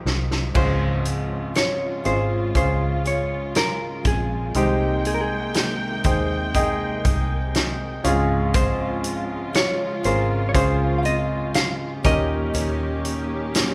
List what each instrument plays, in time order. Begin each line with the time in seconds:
Already playing: string section D#3 F3 G#3, grand piano A#3 D#4 F4 G4
0.06 fingered electric bass C2, snare
0.31 snare
0.54 fingered electric bass C#2, grand piano G#2 C#4 F4 G#4, steel-string acoustic guitar C#3 F3 G#3 C4 G#4, string section C#3 G#3 F4, hollow-body jazz guitar C5, kick, crash
1.05 closed hi-hat
1.54 steel-string acoustic guitar F3 G#3 G#4, hollow-body jazz guitar C#5, snare, closed hi-hat
2.04 fingered electric bass G#1, steel-string acoustic guitar G#3 C4 G#4, grand piano C#4 F4 G#4 D#5, hollow-body jazz guitar C5, closed hi-hat
2.55 fingered electric bass C#2, grand piano C#4 F4 G#4, hollow-body jazz guitar C5, kick, closed hi-hat
3.04 steel-string acoustic guitar G#3 G#4, hollow-body jazz guitar C#5, closed hi-hat
3.55 hollow-body jazz guitar A#4, snare, closed hi-hat
4.04 fingered electric bass A#1, steel-string acoustic guitar G#3 C4 G#4, hollow-body jazz guitar G#4, kick, closed hi-hat
4.54 fingered electric bass C2, steel-string acoustic guitar C3 D#3 G#3 D#4, grand piano C3 G#3 D#4 C5 G5, string section C3 A#3 G5, hollow-body jazz guitar G4, closed hi-hat
5.05 hollow-body jazz guitar G#4, closed hi-hat
5.14 hollow-body jazz guitar A#4
5.21 hollow-body jazz guitar G#4
5.54 steel-string acoustic guitar D#3 G#3 D#4, snare, closed hi-hat
6.04 fingered electric bass D#2, steel-string acoustic guitar G#3 D#4, grand piano D#4 G#4 C5 G5, kick, closed hi-hat
6.54 grand piano D#4 G#4 D#5 G5, kick, closed hi-hat
7.05 fingered electric bass C2, steel-string acoustic guitar G#3 D#4, kick, closed hi-hat
7.55 snare, closed hi-hat
8.04 fingered electric bass C#2, grand piano G#2 C#4 F4 G#4, string section C#3 G#3 F4, steel-string acoustic guitar G#3 C4 F4, closed hi-hat
8.54 steel-string acoustic guitar C#3 F3 G#3 C4 F4, hollow-body jazz guitar C5, kick, closed hi-hat
9.04 closed hi-hat
9.53 steel-string acoustic guitar F3 G#3 F4, hollow-body jazz guitar C#5, snare, closed hi-hat
10.03 fingered electric bass G#1, steel-string acoustic guitar G#3 C4 F4, grand piano C#4 F4 G#4 A#4, hollow-body jazz guitar C5, closed hi-hat
10.49 hollow-body jazz guitar C#5
10.54 fingered electric bass C#2, grand piano C#4 F4 G#4 C5, hollow-body jazz guitar C5, kick, closed hi-hat
10.98 hollow-body jazz guitar F5
11.03 steel-string acoustic guitar G#3 C4 F4, hollow-body jazz guitar D#5, closed hi-hat
11.54 hollow-body jazz guitar F5, snare, closed hi-hat
12.03 fingered electric bass D#2, grand piano A#2 C#4 D#4 G4 A#4, string section D#3 A#3 C#4 G4, steel-string acoustic guitar A#3 C#4 G4, hollow-body jazz guitar D#5, kick, closed hi-hat
12.54 fingered electric bass D#2, steel-string acoustic guitar D#3 A#3 C#4 G4, closed hi-hat
13.05 closed hi-hat
13.54 steel-string acoustic guitar D#3 A#3 C#4 G4, snare, closed hi-hat